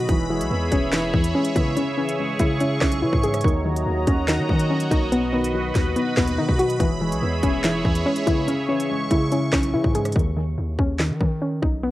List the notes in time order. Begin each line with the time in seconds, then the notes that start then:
Already playing: B2 D#3 F#3 D#4 B5
0.08 E1 E3 G#4 C#5 E5, kick, closed hi-hat
0.30 E3 G#3
0.40 B1, closed hi-hat
0.51 E2 B3
0.72 E1 C#4, kick, closed hi-hat
0.92 E3 E4, snare, clap, closed hi-hat
1.14 E2 E3, kick
1.24 closed hi-hat
1.35 G#3 C#4
1.45 closed hi-hat
1.56 C#3 B3 E4, kick, closed hi-hat
1.77 C#3 C#4 G#4 C#6, closed hi-hat
1.97 E3 C#4
2.09 closed hi-hat
2.19 G#3
2.39 C#3 E4, kick, closed hi-hat
2.60 C#4 E4, closed hi-hat
2.81 B1 C#3 C#4, kick, cross-stick, snare, clap
2.92 closed hi-hat
3.02 C#3 E3 E4
3.13 G#2, kick
3.24 G#3 G#4, closed hi-hat
3.34 cross-stick, closed hi-hat
3.41 D#2 D#3 F#4 D#5 A#5, kick, closed hi-hat
3.48 closed hi-hat
3.65 D#3 F#3
3.76 closed hi-hat
3.86 D#2 A#3
4.07 D#2 C#4, kick, closed hi-hat
4.28 D#3 D#4, snare, clap, closed hi-hat
4.39 D#3
4.49 D#3, kick
4.59 closed hi-hat
4.70 F#3 C#4
4.80 closed hi-hat
4.91 B1 A#3 D#4, kick, closed hi-hat
5.12 B2 B3 B4 B5, closed hi-hat
5.33 D#3 B3
5.44 closed hi-hat
5.54 F#3
5.75 D#2 D#4, kick, snare, closed hi-hat
5.96 B3 D#4, closed hi-hat
6.17 D#2 B2 B3, kick, snare, clap
6.27 closed hi-hat
6.38 D#3 D#4
6.49 B2, kick
6.59 F#3 F#4, closed hi-hat
6.70 closed hi-hat
6.80 E1 E3 G#4 C#5 E5, kick, closed hi-hat
7.01 E3 G#3
7.12 B1, closed hi-hat
7.22 E2 B3
7.43 E1 C#4, kick, closed hi-hat
7.64 E3 E4, snare, clap, closed hi-hat
7.85 E2 E3, kick
7.95 closed hi-hat
8.06 G#3 C#4
8.16 closed hi-hat
8.27 C#3 B3 E4, kick, closed hi-hat
8.48 C#3 C#4 C#6, closed hi-hat
8.69 E3 C#4
8.80 closed hi-hat
8.90 G#3
9.11 C#3 E4, kick, closed hi-hat
9.32 C#4 E4, closed hi-hat
9.52 B1 C#3 C#4, kick, cross-stick, snare, clap
9.63 closed hi-hat
9.74 C#3 E3 E4
9.84 G#2, kick
9.95 G#3 G#4, closed hi-hat
10.05 cross-stick, closed hi-hat
10.12 D#2 D#3, kick, closed hi-hat
10.19 closed hi-hat
10.37 D#3
10.58 D#2
10.79 D#2 C#4, kick
10.99 D#3, snare, clap
11.10 D#3
11.21 D#3, kick
11.42 C#4
11.62 B1 D#4, kick
11.83 B3